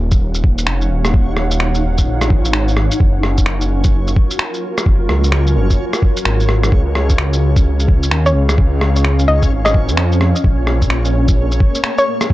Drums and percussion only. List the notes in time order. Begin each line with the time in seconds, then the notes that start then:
0.11 kick, shaker
0.34 shaker
0.44 kick
0.58 shaker
0.67 finger snap
0.81 shaker
1.05 cross-stick, shaker
1.14 kick
1.37 cross-stick
1.51 shaker
1.60 finger snap
1.74 shaker
1.98 kick, shaker
2.21 cross-stick, shaker
2.30 kick
2.45 shaker
2.53 finger snap
2.68 shaker
2.77 cross-stick
2.91 shaker
3.00 kick
3.23 cross-stick
3.38 kick, shaker
3.46 finger snap
3.61 shaker
3.84 kick, shaker
4.07 shaker
4.16 kick
4.31 shaker
4.39 finger snap
4.54 shaker
4.78 cross-stick, shaker
4.86 kick
5.09 cross-stick
5.24 shaker
5.32 finger snap
5.47 shaker
5.70 kick, shaker
5.93 cross-stick, shaker
6.02 kick
6.17 shaker
6.25 finger snap
6.40 shaker
6.49 cross-stick
6.63 cross-stick, shaker
6.72 kick
6.95 cross-stick
7.10 kick, shaker
7.18 finger snap
7.33 shaker
7.56 kick, shaker
7.80 shaker
7.88 kick
8.03 shaker
8.11 finger snap
8.26 shaker
8.49 cross-stick, shaker
8.58 kick
8.81 cross-stick
8.96 shaker
9.05 finger snap
9.19 shaker
9.42 kick, shaker
9.66 cross-stick, shaker
9.74 kick
9.89 shaker
9.97 finger snap
10.12 shaker
10.21 cross-stick
10.35 shaker
10.44 kick
10.67 cross-stick
10.82 kick, shaker
10.90 finger snap
11.05 shaker
11.28 kick, shaker
11.51 shaker
11.60 kick
11.75 shaker
11.84 finger snap
11.98 shaker
12.21 cross-stick, shaker
12.30 kick